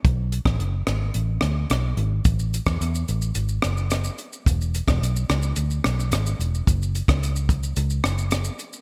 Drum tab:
HH |x-x-x-x-x-x-x-x-|x-x-x-x-x-x-x-x-|x-x-x-x-x-x-x-x-|x-x-x-x-x-x-x-x-|
SH |----------------|xxxxxxxxxxxxxxxx|xxxxxxxxxxxxxxxx|xxxxxxxxxxxxxxxx|
SD |---r--r---r-r---|---r------r-r---|---r--r---r-r---|---r------r-r---|
BD |o--o------------|o--o------------|o--o------------|o--o--o---------|